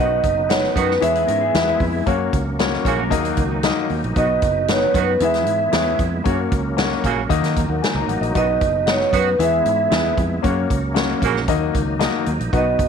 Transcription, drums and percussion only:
0.23 kick medium
0.23 closed hi-hat medium
0.50 snare loud
0.50 closed hi-hat medium
0.64 snare soft
0.76 kick medium
0.76 closed hi-hat medium
0.91 snare soft
1.02 closed hi-hat medium
1.15 closed hi-hat medium
1.28 closed hi-hat medium
1.55 snare medium
1.55 closed hi-hat medium
1.80 kick medium
1.80 open hi-hat soft
2.06 kick medium
2.06 closed hi-hat medium
2.33 kick medium
2.33 closed hi-hat medium
2.59 snare loud
2.59 closed hi-hat medium
2.73 snare soft
2.85 kick medium
2.85 closed hi-hat medium
3.11 kick medium
3.11 closed hi-hat medium
3.25 closed hi-hat medium
3.37 kick medium
3.37 closed hi-hat medium
3.63 snare medium
3.63 closed hi-hat medium
3.89 open hi-hat soft
4.04 closed hi-hat soft
4.16 kick medium
4.16 closed hi-hat medium
4.42 kick medium
4.42 closed hi-hat medium
4.68 snare loud
4.68 closed hi-hat medium
4.94 kick medium
4.94 closed hi-hat medium
5.20 closed hi-hat medium
5.34 snare soft
5.34 closed hi-hat medium
5.46 closed hi-hat medium
5.73 snare loud
5.73 closed hi-hat medium
5.99 kick medium
5.99 closed hi-hat medium
6.25 kick medium
6.25 closed hi-hat medium
6.52 kick medium
6.52 closed hi-hat medium
6.78 snare loud
6.78 closed hi-hat medium
6.92 snare soft
7.04 kick medium
7.04 closed hi-hat medium
7.30 kick medium
7.30 closed hi-hat loud
7.44 snare soft
7.44 closed hi-hat medium
7.56 kick medium
7.56 closed hi-hat medium
7.84 snare medium
7.84 closed hi-hat medium
8.09 closed hi-hat medium
8.23 closed hi-hat soft
8.35 kick medium
8.35 closed hi-hat medium
8.61 kick medium
8.61 closed hi-hat medium
8.87 snare loud
8.87 closed hi-hat medium
9.01 snare soft
9.13 kick medium
9.13 closed hi-hat medium
9.40 closed hi-hat medium
9.66 closed hi-hat medium
9.92 snare loud
9.92 closed hi-hat medium
10.18 kick medium
10.18 closed hi-hat medium
10.44 kick medium
10.44 closed hi-hat medium
10.70 kick medium
10.70 closed hi-hat medium
10.96 snare loud
10.96 closed hi-hat medium
11.22 kick medium
11.22 closed hi-hat medium
11.36 snare soft
11.48 kick medium
11.48 closed hi-hat medium
11.75 kick medium
11.75 closed hi-hat medium
12.00 snare medium
12.00 closed hi-hat medium
12.26 closed hi-hat medium
12.40 closed hi-hat soft
12.53 kick medium
12.53 closed hi-hat medium
12.79 kick medium
12.79 closed hi-hat medium

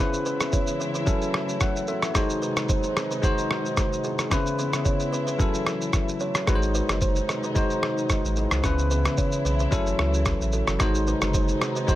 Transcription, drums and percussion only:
0.14 shaker medium
0.26 shaker medium
0.40 cross-stick medium
0.40 shaker medium
0.52 kick medium
0.52 shaker medium
0.67 shaker medium
0.80 shaker medium
0.95 shaker medium
1.07 kick loud
1.07 shaker medium
1.22 shaker soft
1.34 cross-stick medium
1.49 shaker soft
1.60 kick medium
1.60 cross-stick medium
1.60 shaker medium
1.76 shaker medium
1.87 shaker soft
2.02 cross-stick medium
2.02 shaker soft
2.15 kick loud
2.15 cross-stick medium
2.15 shaker medium
2.30 shaker medium
2.42 shaker medium
2.57 cross-stick loud
2.57 shaker medium
2.69 kick medium
2.69 shaker medium
2.83 shaker medium
2.97 cross-stick loud
2.97 shaker medium
3.11 shaker soft
3.23 kick loud
3.23 shaker medium
3.38 shaker medium
3.51 cross-stick medium
3.65 shaker soft
3.77 kick loud
3.77 cross-stick medium
3.77 shaker medium
3.93 shaker medium
4.04 shaker soft
4.19 cross-stick medium
4.19 shaker medium
4.31 kick loud
4.31 cross-stick medium
4.31 shaker medium
4.46 shaker medium
4.59 shaker medium
4.73 cross-stick loud
4.73 shaker medium
4.85 kick medium
4.85 shaker medium
5.00 shaker medium
5.13 shaker medium
5.27 shaker soft
5.39 kick loud
5.39 shaker medium
5.54 shaker medium
5.67 cross-stick medium
5.67 shaker soft
5.81 shaker soft
5.93 kick medium
5.93 cross-stick medium
5.93 shaker medium
6.09 shaker medium
6.20 shaker soft
6.35 cross-stick medium
6.35 shaker soft
6.47 kick loud
6.47 cross-stick medium
6.47 shaker medium
6.62 shaker soft
6.74 shaker medium
6.89 cross-stick loud
6.89 shaker medium
7.01 kick medium
7.01 shaker medium
7.16 shaker medium
7.29 cross-stick medium
7.29 shaker medium
7.43 shaker soft
7.55 kick loud
7.55 shaker medium
7.70 shaker soft
7.83 cross-stick medium
7.98 shaker soft
8.09 kick medium
8.09 cross-stick medium
8.09 shaker medium
8.25 shaker medium
8.36 shaker soft
8.51 cross-stick medium
8.51 shaker soft
8.64 kick loud
8.64 cross-stick medium
8.64 shaker medium
8.78 shaker medium
8.91 shaker medium
9.05 cross-stick loud
9.05 shaker medium
9.17 kick medium
9.17 shaker medium
9.32 shaker medium
9.45 shaker medium
9.59 shaker soft
9.72 kick loud
9.72 shaker medium
9.87 shaker medium
9.99 cross-stick medium
10.14 shaker soft
10.25 kick medium
10.25 cross-stick medium
10.25 shaker medium
10.41 shaker medium
10.52 shaker soft
10.67 cross-stick medium
10.67 shaker medium
10.80 kick loud
10.80 cross-stick medium
10.80 shaker medium
10.95 shaker medium
11.07 shaker medium
11.22 cross-stick loud
11.22 shaker medium
11.34 kick medium
11.34 shaker medium
11.48 shaker medium
11.62 cross-stick medium
11.62 shaker medium
11.76 shaker soft
11.88 kick loud
11.88 shaker medium

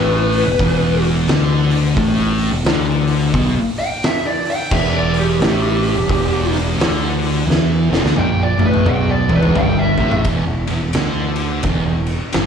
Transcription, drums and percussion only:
0.32 open hi-hat medium
0.59 kick loud
0.59 open hi-hat medium
1.02 open hi-hat medium
1.27 snare loud
1.27 open hi-hat medium
1.71 open hi-hat medium
1.97 kick loud
1.97 open hi-hat medium
2.38 open hi-hat medium
2.65 snare loud
2.65 open hi-hat medium
3.08 open hi-hat medium
3.34 kick loud
3.34 open hi-hat medium
3.76 open hi-hat medium
4.02 snare loud
4.02 open hi-hat medium
4.45 open hi-hat medium
4.71 kick loud
4.71 crash loud
5.14 open hi-hat medium
5.40 snare loud
5.40 open hi-hat medium
5.83 open hi-hat medium
6.09 kick loud
6.09 open hi-hat medium
6.53 snare soft
6.53 open hi-hat medium
6.80 snare loud
6.80 open hi-hat medium
7.22 open hi-hat medium
7.50 snare medium
7.93 snare medium
8.06 snare medium
8.16 high tom medium
8.59 high tom medium
8.74 mid tom medium
8.86 mid tom medium
9.29 mid tom medium
9.43 mid tom medium
9.55 mid tom loud
9.98 floor tom loud
10.11 floor tom loud
10.25 kick loud
10.25 ride loud
10.67 ride medium
10.93 snare loud
10.93 ride medium
11.36 ride medium
11.63 kick loud
11.63 ride medium
12.06 ride medium
12.32 snare loud
12.32 ride medium

